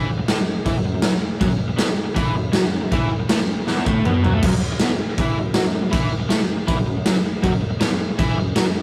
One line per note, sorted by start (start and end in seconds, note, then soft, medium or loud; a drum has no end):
0.10 muted overdriven electric guitar stroke medium
0.19 muted overdriven electric guitar stroke medium
0.28 0.37 A2 medium
0.28 0.37 A3 loud
0.28 snare loud
0.28 crash medium
0.38 0.53 F#2 medium
0.57 muted overdriven electric guitar stroke medium
0.65 0.74 E3 loud
0.65 0.75 E4 loud
0.65 kick loud
0.65 crash medium
0.75 0.84 F#2 medium
0.85 0.93 F#2 medium
0.94 1.02 F#2 medium
1.02 1.12 F#2 loud
1.02 1.13 F#3 loud
1.02 snare loud
1.02 crash medium
1.41 1.48 F#2 medium
1.41 1.50 F#3 loud
1.41 kick loud
1.41 crash medium
1.49 1.58 F#2 medium
1.59 muted overdriven electric guitar stroke medium
1.70 muted overdriven electric guitar stroke medium
1.77 1.87 B2 medium
1.77 1.87 B3 loud
1.77 snare loud
1.77 crash medium
1.87 1.96 F#2 medium
1.97 muted overdriven electric guitar stroke medium
2.05 muted overdriven electric guitar stroke medium
2.15 2.34 E3 loud
2.15 2.35 E4 loud
2.15 kick loud
2.15 crash medium
2.35 2.50 F#2 medium
2.53 2.62 F#3 medium
2.53 2.63 F#4 loud
2.53 snare loud
2.53 crash medium
2.63 2.70 F#2 medium
2.72 2.80 F#2 medium
2.82 2.92 F#2 medium
2.92 3.10 E3 loud
2.92 3.11 E4 loud
2.92 kick loud
2.92 crash medium
3.11 muted overdriven electric guitar stroke medium
3.20 muted overdriven electric guitar stroke medium
3.29 3.39 A2 medium
3.29 3.39 A3 loud
3.29 snare loud
3.29 crash medium
3.40 3.55 F#2 medium
3.60 muted overdriven electric guitar stroke medium
3.67 3.86 E2 loud
3.67 3.86 E3 loud
3.67 snare medium
3.86 4.04 A2 loud
3.86 4.05 A3 loud
3.86 kick loud
4.05 4.24 B2 loud
4.05 4.24 B3 loud
4.05 mid tom loud
4.23 4.32 F#2 medium
4.23 4.33 F#3 loud
4.23 floor tom medium
4.33 4.42 A2 loud
4.33 4.43 A3 loud
4.43 4.52 F#2 loud
4.43 4.52 F#3 loud
4.43 kick loud
4.43 crash loud
4.43 crash medium
4.53 4.62 F#2 medium
4.63 muted overdriven electric guitar stroke medium
4.72 muted overdriven electric guitar stroke medium
4.80 4.90 B2 loud
4.80 4.90 B3 loud
4.80 snare loud
4.80 crash medium
4.91 5.00 F#2 medium
5.01 muted overdriven electric guitar stroke medium
5.11 muted overdriven electric guitar stroke medium
5.18 5.37 E3 loud
5.18 5.37 E4 loud
5.18 kick loud
5.18 crash medium
5.38 5.53 F#2 medium
5.54 5.64 F#3 medium
5.54 5.64 F#4 loud
5.54 snare loud
5.54 crash medium
5.65 5.72 F#2 medium
5.73 5.81 F#2 medium
5.82 5.93 F#2 medium
5.91 6.10 E3 loud
5.91 6.10 E4 loud
5.91 kick loud
5.91 crash medium
6.11 muted overdriven electric guitar stroke medium
6.20 muted overdriven electric guitar stroke medium
6.29 6.39 A2 loud
6.29 6.39 A3 loud
6.29 snare loud
6.29 crash medium
6.38 6.54 F#2 medium
6.57 muted overdriven electric guitar stroke medium
6.67 6.77 E3 loud
6.67 6.77 E4 loud
6.67 kick loud
6.67 crash medium
6.75 6.85 F#2 medium
6.86 6.96 F#2 medium
6.97 7.04 F#2 medium
7.06 7.15 F#2 loud
7.06 7.15 F#3 loud
7.06 snare loud
7.06 crash medium
7.43 7.51 F#2 loud
7.43 7.53 F#3 loud
7.43 kick loud
7.43 crash medium
7.52 7.61 F#2 medium
7.62 muted overdriven electric guitar stroke medium
7.71 muted overdriven electric guitar stroke medium
7.80 7.90 B2 medium
7.80 7.90 B3 loud
7.80 snare loud
7.80 crash medium
7.89 7.98 F#2 medium
7.99 muted overdriven electric guitar stroke medium
8.09 muted overdriven electric guitar stroke medium
8.18 8.37 E3 loud
8.18 8.37 E4 loud
8.18 kick loud
8.18 crash medium
8.37 8.52 F#2 medium
8.56 8.65 F#3 loud
8.56 8.65 F#4 loud
8.56 snare loud
8.56 crash medium
8.65 8.73 F#2 medium
8.74 8.82 F#2 medium